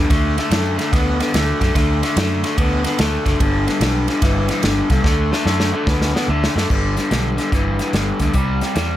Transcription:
0.10 D2 D3 A3, kick, snare, ride
0.38 D3 A3, snare, ride
0.50 F#2 D3 A3, snare, ride
0.77 D3 A3, snare, ride
0.92 D2 D3 B3, kick, snare, ride
1.20 D3 B3, snare, ride
1.34 D2 D3 A3, snare, ride
1.60 F#2 D3 A3, kick, snare, ride
1.75 D2 D3 A3, kick, snare, ride
2.02 D3 A3, snare, ride
2.16 F#2 D3 A3, snare, ride
2.43 D3 A3, snare, ride
2.58 D2 D3 B3, kick, ride
2.84 D3 B3, snare, ride
2.99 D2 D3 A3, snare, ride
3.25 F#1 D3 A3, kick, snare, ride
3.40 G1 G2 D3, kick, ride
3.67 G2 D3, snare, ride
3.80 B1 G2 D3, snare, ride
4.08 G2 D3, snare, ride
4.22 G1 G2 E3, kick, snare, ride
4.49 G2 E3, snare, ride
4.63 G1 G2 D3, snare, ride
4.90 C2 G2 D3, kick, snare, ride
5.04 D2 D3 A3, kick, snare
5.31 D3 A3, snare
5.45 F#2 D3 A3, snare
5.60 snare
5.73 D3 A3
5.87 D2 D3 B3, kick, snare
6.02 snare
6.14 D3 B3, snare
6.28 D2 D3 A3
6.44 snare
6.55 F#2 D3 A3, snare
6.69 G1 G2 D3, kick, crash
6.97 G2 D3, snare, closed hi-hat
7.11 B1 G2 D3, snare, closed hi-hat
7.37 G2 D3, snare, closed hi-hat
7.52 G1 G2 E3, kick, snare, closed hi-hat
7.79 G2 E3, snare, closed hi-hat
7.93 G1 G2 D3, snare, closed hi-hat
8.20 D2 G2 D3, kick, snare, closed hi-hat
8.34 C2 C3 G3, kick, closed hi-hat
8.61 C3 G3, snare, closed hi-hat
8.75 E2 C3 G3, snare, closed hi-hat

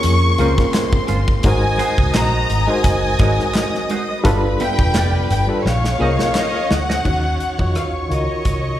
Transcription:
Already playing: C#3 G#3 A#3 C#4 F4 G#4 A#4 C#5 C#6
0.03 F2, muted clean electric guitar stroke, closed hi-hat
0.38 C#2 G#3 A#3 C4 C#4 F4 G#4 A#4 C5 C6, closed hi-hat
0.58 kick, snare
0.73 muted clean electric guitar stroke, snare, clap, closed hi-hat
0.93 kick
1.07 G1 G#3 C#4 F4 C5, closed hi-hat
1.26 muted clean electric guitar stroke, kick
1.43 G#1 G#3 C4 D#4 F#4 A#4 C5 D#5 G#5 D#6, kick, closed hi-hat
1.78 G#3 D#4 F#4 C5, closed hi-hat
1.98 C2, kick
2.14 A#1 G#3 D#4 F#4 C5 A#5, snare, clap, closed hi-hat
2.49 G#1, muted clean electric guitar stroke, closed hi-hat
2.67 G#3 D#4 F#4 A#4 C5 G#5, muted clean electric guitar stroke
2.84 F#1, muted clean electric guitar stroke, kick, closed hi-hat
3.19 G#1 G#3 D#4 F#4 A#4 C#5 D#5, kick, closed hi-hat
3.28 D#5
3.38 muted clean electric guitar stroke, snare
3.54 muted clean electric guitar stroke, snare, clap, closed hi-hat
3.75 snare
3.90 G#3 D#4 F#4 C5, closed hi-hat
4.09 muted clean electric guitar stroke
4.24 G1 G3 D4 F4 A4 B4 B5, kick, closed hi-hat
4.60 B3 F4 G4 E5 G5, closed hi-hat
4.79 E1, kick
4.94 F1 B3 F4 G4 D5, snare, clap, closed hi-hat
5.30 G1 G5, muted clean electric guitar stroke, closed hi-hat
5.47 G3 D4 F4 A4 B4, muted clean electric guitar stroke
5.64 A#1 G#3 A#3 C#4 C#5 F5 C#6, muted clean electric guitar stroke, snare
5.84 snare
5.98 C2 A#3 C#4 F4 G#4 A#4 C5 C#5 D#5
6.03 D#5
6.19 muted clean electric guitar stroke, snare
6.34 D#5, muted clean electric guitar stroke, snare, clap
6.54 muted clean electric guitar stroke
6.71 D2 F#5, snare
6.89 C#4 G#4 C5 D#5, snare
7.04 D#2 D#3 C#4 D#4 F#4 C#5 C#6, kick, crash
7.40 closed hi-hat
7.59 F2 D#3 D#4 F4 F#4 C#5, kick
7.75 D#2 F5, cross-stick, closed hi-hat
8.09 C#2 D#3 D#4 F4 F#4 A#4 D#5, closed hi-hat
8.45 C2, kick, closed hi-hat

